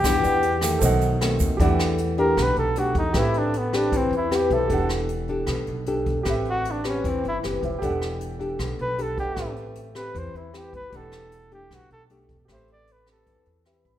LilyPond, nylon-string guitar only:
\new Staff \with { instrumentName = "Nylon-string guitar" } { \time 4/4 \key e \minor \tempo 4 = 154 << { <b d' g'>4 r8 <dis a>4. <dis a c'>4 | <a d' g'>4 r8 <a d' g'>4. <a d' g'>4 | <c' g' b'>4 r8 <c' g' b'>4. <c' g' b'>8 r8 | <d' g' a'>4 r8 <d' g' a'>4. <d' g' a'>4 |
<c' g' b'>4. <c' g' b'>4. <c' g' b'>8 r8 | <d' g' a'>4. <d' g' a'>4. <d' g' a'>4 | <c' g' b'>4. <c' g' b'>4. <c' g' b'>8 r8 | <a d' g'>4 r8 <a d' g'>4. <a d' g'>8 r8 |
<c' g' b'>4. <c' g' b'>4. <c' g' b'>4 | } \\ { e2 b,2 | e2 b,2 | a2 e2 | e2 b,2 |
a2 e2 | e2 b,2 | a2 e2 | e2 b,2 |
a2 e2 | } >> }